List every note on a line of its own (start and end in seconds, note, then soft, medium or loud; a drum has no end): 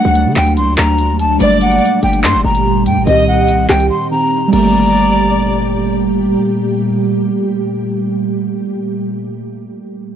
0.00 1.36 F#3 medium
0.00 1.39 F#3 medium
0.00 1.38 A3 medium
0.00 1.37 D4 medium
0.00 1.39 D4 medium
0.00 0.13 F#5 loud
0.00 0.34 F#5 medium
0.05 0.27 D2 loud
0.15 closed hi-hat medium
0.26 0.36 D3 loud
0.36 0.58 D2 loud
0.36 0.53 G5 medium
0.36 clap medium
0.36 closed hi-hat medium
0.47 closed hi-hat soft
0.57 0.69 C2 loud
0.57 0.74 C6 medium
0.57 closed hi-hat medium
0.67 0.77 D2 loud
0.78 1.11 D2 loud
0.78 1.17 A#5 medium
0.78 clap loud
0.78 closed hi-hat medium
0.99 closed hi-hat medium
1.09 1.26 D#2 medium
1.19 1.37 A5 medium
1.19 closed hi-hat medium
1.25 1.40 D2 loud
1.37 1.80 G1 loud
1.37 3.05 A#2 medium
1.37 3.02 G3 medium
1.37 3.05 G3 medium
1.37 3.04 A#3 medium
1.37 3.05 G4 medium
1.37 1.79 D5 loud
1.37 1.58 D5 medium
1.37 closed hi-hat medium
1.43 3.05 A3 medium
1.61 2.01 F#5 medium
1.61 closed hi-hat medium
1.72 closed hi-hat soft
1.79 closed hi-hat medium
1.85 closed hi-hat medium
2.03 2.25 G1 loud
2.03 2.20 G5 medium
2.03 closed hi-hat medium
2.13 closed hi-hat medium
2.24 2.36 G2 loud
2.24 2.41 C6 loud
2.24 clap loud
2.34 2.44 G1 loud
2.45 2.88 G1 loud
2.45 2.84 A#5 medium
2.55 closed hi-hat medium
2.86 2.98 G2 loud
2.86 3.03 G5 medium
2.86 closed hi-hat medium
2.97 3.06 G1 loud
3.05 3.67 C2 loud
3.05 4.08 D#3 medium
3.05 4.51 D#3 medium
3.05 4.51 C4 medium
3.05 4.09 C4 medium
3.05 4.51 G4 medium
3.05 3.46 D#5 medium
3.05 3.24 D#5 loud
3.05 closed hi-hat medium
3.10 4.11 G4 medium
3.28 3.67 F#5 medium
3.49 closed hi-hat medium
3.69 3.90 C2 loud
3.69 3.87 G5 medium
3.69 cross-stick loud
3.69 clap medium
3.69 closed hi-hat medium
3.80 closed hi-hat medium
3.90 4.07 C6 medium
4.10 4.52 D#3 medium
4.10 4.53 C4 soft
4.10 4.54 G4 medium
4.10 4.50 A#5 medium
4.48 8.72 G3 medium
4.53 6.36 G1 loud
4.53 8.77 A#2 medium
4.53 8.77 G3 medium
4.53 8.78 A#3 medium
4.53 8.77 G4 medium
4.53 5.95 D5 loud
4.53 5.95 A#5 loud
4.53 crash medium
4.58 8.83 A3 loud